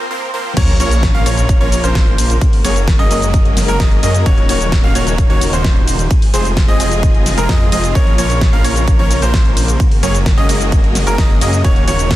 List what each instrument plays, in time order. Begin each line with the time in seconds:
0.11 supersaw synth F3 A#3 C4 A#4 C5
0.34 supersaw synth F3 A#3 C4 A#4 C5
0.57 detuned saw bass A#1, string section C#3 F3 A#3 F4 A#4, supersaw synth F3 A#3 C#4 A#4 C#5, grand piano C#5, kick, closed hi-hat, crash, ride, sub drop, shaker
0.68 closed hi-hat
0.80 detuned saw bass A#1, supersaw synth F3 A#3 C#4 A#4 C#5, grand piano C#5, open hi-hat, ride, shaker
0.91 closed hi-hat, shaker
1.03 kick, snare, closed hi-hat, ride, shaker
1.15 detuned saw bass A#1, supersaw synth F3 A#3 C#4 A#4 F5, grand piano F5, closed hi-hat
1.26 detuned saw bass A#1, supersaw synth F3 A#3 C#4 A#4 C#5, grand piano C#5, open hi-hat, ride, shaker
1.38 closed hi-hat, shaker
1.49 kick, closed hi-hat, ride, shaker
1.61 detuned saw bass A#1, supersaw synth F3 A#3 C#4 A#4 C#5, grand piano C#5, closed hi-hat
1.72 open hi-hat, ride, shaker
1.84 detuned saw bass A#1, supersaw synth F3 A#3 C#4 A#4 C5, grand piano C5, closed hi-hat, shaker
1.95 kick, snare, closed hi-hat, ride, shaker
2.07 closed hi-hat
2.18 open hi-hat, ride, shaker
2.30 closed hi-hat, shaker
2.41 string section G#3 F#4, kick, closed hi-hat, ride, shaker
2.53 open hi-hat
2.65 detuned saw bass F#1, supersaw synth F#3 A#3 C#4 G#4 C#5, grand piano C#5, open hi-hat, ride, shaker
2.76 closed hi-hat, shaker
2.88 kick, snare, closed hi-hat, ride, shaker
2.99 detuned saw bass F#1, supersaw synth F#3 A#3 C#4 G#4 D#5, grand piano D#5, closed hi-hat
3.11 detuned saw bass F#1, supersaw synth F#3 A#3 C#4 G#4 D#5, grand piano D#5, open hi-hat, ride, shaker
3.22 closed hi-hat, shaker
3.34 kick, closed hi-hat, ride, shaker
3.45 closed hi-hat
3.57 snare, open hi-hat, ride, shaker
3.68 detuned saw bass F#1, supersaw synth F#3 A#3 C#4 G#4 A#4, grand piano A#4, closed hi-hat, shaker
3.80 detuned saw bass F#1, supersaw synth F#3 A#3 C#4 G#4 D#5, grand piano D#5, kick, snare, closed hi-hat, ride, shaker
3.91 closed hi-hat
4.03 detuned saw bass F#2, supersaw synth F#3 A#3 C#4 G#4 D#5, grand piano D#5, open hi-hat, ride, shaker
4.14 closed hi-hat, shaker
4.26 detuned saw bass D#1, supersaw synth D#3 A#3 C#4 F#4 C#5, string section F#3 A#3 D#4, grand piano C#5, kick, closed hi-hat, ride, shaker
4.38 closed hi-hat
4.49 detuned saw bass D#1, supersaw synth D#3 A#3 C#4 F#4 C#5, grand piano C#5, open hi-hat, ride, shaker
4.61 closed hi-hat, shaker
4.72 kick, snare, closed hi-hat, ride, shaker
4.84 detuned saw bass D#1, supersaw synth D#3 A#3 C#4 F#4 F5, grand piano F5, closed hi-hat
4.95 detuned saw bass D#1, supersaw synth D#3 A#3 C#4 F#4 C#5, grand piano C#5, open hi-hat, ride, shaker
5.07 closed hi-hat, shaker
5.18 kick, closed hi-hat, ride, shaker
5.30 detuned saw bass D#1, supersaw synth D#3 A#3 C#4 F#4 C#5, grand piano C#5, closed hi-hat
5.41 open hi-hat, ride, shaker
5.53 detuned saw bass D#1, supersaw synth D#3 A#3 C#4 F#4 C5, grand piano C5, closed hi-hat, shaker
5.64 kick, snare, closed hi-hat, ride, shaker
5.76 closed hi-hat
5.88 open hi-hat, ride, shaker
5.99 closed hi-hat, shaker
6.11 string section C3 F3 G#3 F4 G#4, kick, closed hi-hat, ride, shaker
6.22 open hi-hat
6.34 detuned saw bass F1, supersaw synth F3 G#3 C4 G#4 C5, grand piano C5, open hi-hat, ride, shaker
6.45 closed hi-hat, shaker
6.57 kick, snare, closed hi-hat, ride, shaker
6.68 detuned saw bass F1, supersaw synth F3 G#3 C4 G#4 D#5, grand piano D#5, closed hi-hat
6.80 detuned saw bass F1, supersaw synth F3 G#3 C4 G#4 D#5, grand piano D#5, open hi-hat, ride, shaker
6.91 closed hi-hat, shaker
7.03 kick, closed hi-hat, ride, shaker
7.15 closed hi-hat
7.26 snare, open hi-hat, ride, shaker
7.38 detuned saw bass F1, supersaw synth F3 G#3 C4 G#4 A#4, grand piano A#4, closed hi-hat, shaker
7.49 detuned saw bass F2, supersaw synth F3 G#3 C4 G#4 D#5, grand piano D#5, kick, snare, closed hi-hat, ride, shaker
7.61 closed hi-hat
7.72 detuned saw bass F1, supersaw synth F3 G#3 C4 G#4 D#5, grand piano D#5, open hi-hat, ride, shaker
7.84 closed hi-hat, shaker
7.95 detuned saw bass A#1, string section C#3 A#3 A#4, supersaw synth F3 A#3 C#4 A#4 C#5, grand piano C#5, kick, closed hi-hat, ride, shaker
8.07 closed hi-hat
8.18 detuned saw bass A#1, supersaw synth F3 A#3 C#4 A#4 C#5, grand piano C#5, open hi-hat, ride, shaker
8.30 closed hi-hat, shaker
8.41 kick, snare, closed hi-hat, ride, shaker
8.53 detuned saw bass A#1, supersaw synth F3 A#3 C#4 A#4 F5, grand piano F5, closed hi-hat
8.64 detuned saw bass A#1, supersaw synth F3 A#3 C#4 A#4 C#5, grand piano C#5, open hi-hat, ride, shaker
8.76 closed hi-hat, shaker
8.88 kick, closed hi-hat, ride, shaker
8.99 detuned saw bass A#1, supersaw synth F3 A#3 C#4 A#4 C#5, grand piano C#5, closed hi-hat
9.11 open hi-hat, ride, shaker
9.22 detuned saw bass A#1, supersaw synth F3 A#3 C#4 A#4 C5, grand piano C5, closed hi-hat, shaker
9.34 kick, snare, closed hi-hat, ride, shaker
9.45 closed hi-hat
9.57 open hi-hat, ride, shaker
9.68 closed hi-hat, shaker
9.80 string section G#3 F#4 A#4, kick, closed hi-hat, ride, shaker
9.91 open hi-hat
10.03 detuned saw bass F#1, supersaw synth F#3 A#3 C#4 G#4 C#5, grand piano C#5, open hi-hat, ride, shaker
10.14 closed hi-hat, shaker
10.26 kick, snare, closed hi-hat, ride, shaker
10.38 detuned saw bass F#1, supersaw synth F#3 A#3 C#4 G#4 D#5, grand piano D#5, closed hi-hat
10.49 detuned saw bass F#1, supersaw synth F#3 A#3 C#4 G#4 D#5, grand piano D#5, open hi-hat, ride, shaker
10.61 closed hi-hat, shaker
10.72 kick, closed hi-hat, ride, shaker
10.84 closed hi-hat
10.95 snare, open hi-hat, ride, shaker
11.07 detuned saw bass F#1, supersaw synth F#3 A#3 C#4 G#4 A#4, grand piano A#4, closed hi-hat, shaker
11.18 detuned saw bass F#1, supersaw synth F#3 A#3 C#4 G#4 D#5, grand piano D#5, kick, snare, closed hi-hat, ride, shaker
11.30 closed hi-hat
11.41 detuned saw bass F#2, supersaw synth F#3 A#3 C#4 G#4 D#5, grand piano D#5, open hi-hat, ride, shaker
11.53 closed hi-hat, shaker
11.64 detuned saw bass D#1, supersaw synth D#3 A#3 C#4 F#4 C#5, string section F#3 A#3 D#4 A#4, grand piano C#5, kick, closed hi-hat, ride, shaker
11.76 closed hi-hat
11.88 detuned saw bass D#1, supersaw synth D#3 A#3 C#4 F#4 C#5, grand piano C#5, open hi-hat, ride, shaker
11.99 closed hi-hat, shaker
12.11 kick, snare, closed hi-hat, ride, shaker